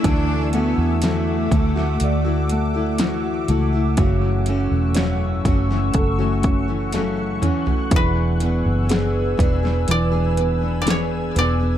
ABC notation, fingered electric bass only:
X:1
M:4/4
L:1/16
Q:1/4=61
K:Dlyd
V:1 name="Fingered electric bass" clef=bass
D,,3 E,,3 D,,2 D,,6 C,,2 | F,,,3 E,,,3 F,,,2 F,,,6 z2 | E,,,3 F,,,3 E,,,2 E,,,6 E,,,2 |]